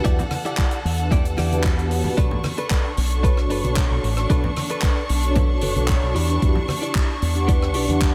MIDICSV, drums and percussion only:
0, 0, Header, 1, 2, 480
1, 0, Start_track
1, 0, Key_signature, 2, "minor"
1, 0, Tempo, 530973
1, 46, Time_signature, 4, 2, 24, 8
1, 7364, End_track
2, 0, Start_track
2, 0, Title_t, "Drums"
2, 39, Note_on_c, 9, 42, 91
2, 46, Note_on_c, 9, 36, 112
2, 130, Note_off_c, 9, 42, 0
2, 137, Note_off_c, 9, 36, 0
2, 170, Note_on_c, 9, 64, 78
2, 173, Note_on_c, 9, 42, 51
2, 261, Note_off_c, 9, 64, 0
2, 264, Note_off_c, 9, 42, 0
2, 279, Note_on_c, 9, 37, 83
2, 279, Note_on_c, 9, 63, 76
2, 281, Note_on_c, 9, 46, 89
2, 369, Note_off_c, 9, 63, 0
2, 370, Note_off_c, 9, 37, 0
2, 372, Note_off_c, 9, 46, 0
2, 413, Note_on_c, 9, 42, 60
2, 503, Note_off_c, 9, 42, 0
2, 519, Note_on_c, 9, 39, 113
2, 522, Note_on_c, 9, 42, 89
2, 527, Note_on_c, 9, 36, 110
2, 609, Note_off_c, 9, 39, 0
2, 613, Note_off_c, 9, 42, 0
2, 618, Note_off_c, 9, 36, 0
2, 642, Note_on_c, 9, 42, 57
2, 732, Note_off_c, 9, 42, 0
2, 774, Note_on_c, 9, 46, 103
2, 864, Note_off_c, 9, 46, 0
2, 886, Note_on_c, 9, 42, 68
2, 977, Note_off_c, 9, 42, 0
2, 1007, Note_on_c, 9, 36, 107
2, 1009, Note_on_c, 9, 64, 80
2, 1010, Note_on_c, 9, 42, 88
2, 1098, Note_off_c, 9, 36, 0
2, 1099, Note_off_c, 9, 64, 0
2, 1100, Note_off_c, 9, 42, 0
2, 1131, Note_on_c, 9, 42, 59
2, 1221, Note_off_c, 9, 42, 0
2, 1237, Note_on_c, 9, 63, 59
2, 1247, Note_on_c, 9, 37, 78
2, 1249, Note_on_c, 9, 46, 98
2, 1327, Note_off_c, 9, 63, 0
2, 1337, Note_off_c, 9, 37, 0
2, 1339, Note_off_c, 9, 46, 0
2, 1372, Note_on_c, 9, 63, 50
2, 1377, Note_on_c, 9, 42, 67
2, 1462, Note_off_c, 9, 63, 0
2, 1467, Note_off_c, 9, 42, 0
2, 1480, Note_on_c, 9, 39, 121
2, 1488, Note_on_c, 9, 36, 108
2, 1490, Note_on_c, 9, 42, 92
2, 1571, Note_off_c, 9, 39, 0
2, 1579, Note_off_c, 9, 36, 0
2, 1580, Note_off_c, 9, 42, 0
2, 1615, Note_on_c, 9, 42, 51
2, 1705, Note_off_c, 9, 42, 0
2, 1724, Note_on_c, 9, 46, 98
2, 1815, Note_off_c, 9, 46, 0
2, 1843, Note_on_c, 9, 64, 76
2, 1849, Note_on_c, 9, 63, 54
2, 1854, Note_on_c, 9, 46, 71
2, 1933, Note_off_c, 9, 64, 0
2, 1939, Note_off_c, 9, 63, 0
2, 1945, Note_off_c, 9, 46, 0
2, 1966, Note_on_c, 9, 42, 88
2, 1968, Note_on_c, 9, 36, 117
2, 2056, Note_off_c, 9, 42, 0
2, 2059, Note_off_c, 9, 36, 0
2, 2090, Note_on_c, 9, 64, 79
2, 2180, Note_off_c, 9, 64, 0
2, 2203, Note_on_c, 9, 63, 85
2, 2205, Note_on_c, 9, 46, 99
2, 2207, Note_on_c, 9, 37, 82
2, 2293, Note_off_c, 9, 63, 0
2, 2296, Note_off_c, 9, 46, 0
2, 2298, Note_off_c, 9, 37, 0
2, 2330, Note_on_c, 9, 42, 66
2, 2420, Note_off_c, 9, 42, 0
2, 2446, Note_on_c, 9, 39, 122
2, 2447, Note_on_c, 9, 36, 114
2, 2450, Note_on_c, 9, 42, 91
2, 2536, Note_off_c, 9, 39, 0
2, 2538, Note_off_c, 9, 36, 0
2, 2541, Note_off_c, 9, 42, 0
2, 2686, Note_on_c, 9, 46, 111
2, 2776, Note_off_c, 9, 46, 0
2, 2807, Note_on_c, 9, 42, 63
2, 2898, Note_off_c, 9, 42, 0
2, 2927, Note_on_c, 9, 36, 110
2, 2930, Note_on_c, 9, 42, 99
2, 3017, Note_off_c, 9, 36, 0
2, 3021, Note_off_c, 9, 42, 0
2, 3050, Note_on_c, 9, 37, 55
2, 3141, Note_off_c, 9, 37, 0
2, 3165, Note_on_c, 9, 46, 96
2, 3255, Note_off_c, 9, 46, 0
2, 3287, Note_on_c, 9, 63, 59
2, 3294, Note_on_c, 9, 42, 64
2, 3378, Note_off_c, 9, 63, 0
2, 3385, Note_off_c, 9, 42, 0
2, 3403, Note_on_c, 9, 39, 127
2, 3407, Note_on_c, 9, 36, 117
2, 3410, Note_on_c, 9, 42, 88
2, 3494, Note_off_c, 9, 39, 0
2, 3497, Note_off_c, 9, 36, 0
2, 3500, Note_off_c, 9, 42, 0
2, 3651, Note_on_c, 9, 46, 93
2, 3741, Note_off_c, 9, 46, 0
2, 3770, Note_on_c, 9, 37, 78
2, 3773, Note_on_c, 9, 42, 69
2, 3860, Note_off_c, 9, 37, 0
2, 3864, Note_off_c, 9, 42, 0
2, 3886, Note_on_c, 9, 36, 122
2, 3886, Note_on_c, 9, 42, 91
2, 3976, Note_off_c, 9, 42, 0
2, 3977, Note_off_c, 9, 36, 0
2, 4012, Note_on_c, 9, 64, 85
2, 4103, Note_off_c, 9, 64, 0
2, 4124, Note_on_c, 9, 46, 105
2, 4130, Note_on_c, 9, 37, 78
2, 4131, Note_on_c, 9, 63, 74
2, 4214, Note_off_c, 9, 46, 0
2, 4221, Note_off_c, 9, 37, 0
2, 4222, Note_off_c, 9, 63, 0
2, 4243, Note_on_c, 9, 42, 68
2, 4333, Note_off_c, 9, 42, 0
2, 4355, Note_on_c, 9, 39, 119
2, 4366, Note_on_c, 9, 36, 122
2, 4366, Note_on_c, 9, 42, 94
2, 4446, Note_off_c, 9, 39, 0
2, 4456, Note_off_c, 9, 36, 0
2, 4457, Note_off_c, 9, 42, 0
2, 4603, Note_on_c, 9, 46, 114
2, 4693, Note_off_c, 9, 46, 0
2, 4727, Note_on_c, 9, 42, 63
2, 4817, Note_off_c, 9, 42, 0
2, 4839, Note_on_c, 9, 42, 87
2, 4845, Note_on_c, 9, 36, 124
2, 4845, Note_on_c, 9, 64, 82
2, 4930, Note_off_c, 9, 42, 0
2, 4936, Note_off_c, 9, 36, 0
2, 4936, Note_off_c, 9, 64, 0
2, 5073, Note_on_c, 9, 46, 113
2, 5083, Note_on_c, 9, 63, 66
2, 5163, Note_off_c, 9, 46, 0
2, 5174, Note_off_c, 9, 63, 0
2, 5207, Note_on_c, 9, 63, 62
2, 5211, Note_on_c, 9, 42, 63
2, 5298, Note_off_c, 9, 63, 0
2, 5302, Note_off_c, 9, 42, 0
2, 5316, Note_on_c, 9, 39, 127
2, 5326, Note_on_c, 9, 36, 118
2, 5327, Note_on_c, 9, 42, 87
2, 5407, Note_off_c, 9, 39, 0
2, 5416, Note_off_c, 9, 36, 0
2, 5417, Note_off_c, 9, 42, 0
2, 5564, Note_on_c, 9, 46, 105
2, 5654, Note_off_c, 9, 46, 0
2, 5693, Note_on_c, 9, 42, 69
2, 5784, Note_off_c, 9, 42, 0
2, 5805, Note_on_c, 9, 42, 88
2, 5806, Note_on_c, 9, 36, 126
2, 5895, Note_off_c, 9, 42, 0
2, 5896, Note_off_c, 9, 36, 0
2, 5925, Note_on_c, 9, 64, 78
2, 6015, Note_off_c, 9, 64, 0
2, 6041, Note_on_c, 9, 63, 88
2, 6046, Note_on_c, 9, 37, 75
2, 6051, Note_on_c, 9, 46, 104
2, 6132, Note_off_c, 9, 63, 0
2, 6136, Note_off_c, 9, 37, 0
2, 6142, Note_off_c, 9, 46, 0
2, 6178, Note_on_c, 9, 42, 64
2, 6268, Note_off_c, 9, 42, 0
2, 6283, Note_on_c, 9, 39, 117
2, 6286, Note_on_c, 9, 36, 119
2, 6287, Note_on_c, 9, 42, 76
2, 6374, Note_off_c, 9, 39, 0
2, 6376, Note_off_c, 9, 36, 0
2, 6377, Note_off_c, 9, 42, 0
2, 6526, Note_on_c, 9, 46, 102
2, 6616, Note_off_c, 9, 46, 0
2, 6650, Note_on_c, 9, 42, 58
2, 6740, Note_off_c, 9, 42, 0
2, 6765, Note_on_c, 9, 42, 92
2, 6766, Note_on_c, 9, 36, 121
2, 6855, Note_off_c, 9, 42, 0
2, 6856, Note_off_c, 9, 36, 0
2, 6893, Note_on_c, 9, 37, 66
2, 6983, Note_off_c, 9, 37, 0
2, 6995, Note_on_c, 9, 46, 109
2, 7085, Note_off_c, 9, 46, 0
2, 7131, Note_on_c, 9, 63, 54
2, 7138, Note_on_c, 9, 42, 71
2, 7221, Note_off_c, 9, 63, 0
2, 7229, Note_off_c, 9, 42, 0
2, 7245, Note_on_c, 9, 36, 123
2, 7245, Note_on_c, 9, 42, 87
2, 7247, Note_on_c, 9, 39, 117
2, 7335, Note_off_c, 9, 42, 0
2, 7336, Note_off_c, 9, 36, 0
2, 7338, Note_off_c, 9, 39, 0
2, 7364, End_track
0, 0, End_of_file